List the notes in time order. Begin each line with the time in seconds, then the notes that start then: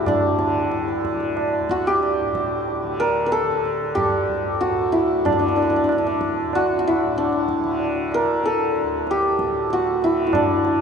Already playing: D2 A2 D3 E4 F#4 A4
0.07 D4, tabla na, tabla ge
0.38 D3, tabla te
0.71 tabla te
0.88 tabla te
1.00 D3
1.05 tabla ke
1.20 tabla te
1.37 tabla na
1.60 D2
1.69 F#4, tabla ke
1.86 G4, tabla te
2.03 tabla na
2.21 A2
2.35 tabla ke
2.68 tabla tin
2.82 D3
3.00 A#4, tabla na
3.26 A#4
3.32 A4, tabla te
3.42 D3
3.65 tabla te
3.95 G4, tabla na, tabla ge
4.04 D2
4.29 tabla ge
4.61 A2 F#4, tabla te
4.92 E4, tabla te
5.25 D3 D4, tabla na, tabla ge
5.32 D4
5.39 D4
5.48 D4
5.56 D4, tabla te
5.62 D4
5.70 D4
5.76 D4
5.84 D3 D4
5.89 D4, tabla na
5.98 D4
6.07 D4
6.21 tabla ke
6.46 D2
6.53 F#4, tabla na
6.79 F#4
6.85 E4, tabla te
7.03 A2
7.16 D4, tabla te
7.33 tabla te
7.49 tabla ke
7.64 D3, tabla te
7.80 tabla tin
8.12 A#4, tabla na
8.24 D3
8.44 A4, tabla te
8.75 tabla te
8.84 D2
9.07 G4, tabla te
9.23 tabla te
9.39 tabla ke
9.44 A2
9.54 tabla te
9.70 F#4, tabla te
10.02 D3 E4, tabla te
10.27 E4
10.33 D4, tabla na, tabla ge
10.62 D3, tabla te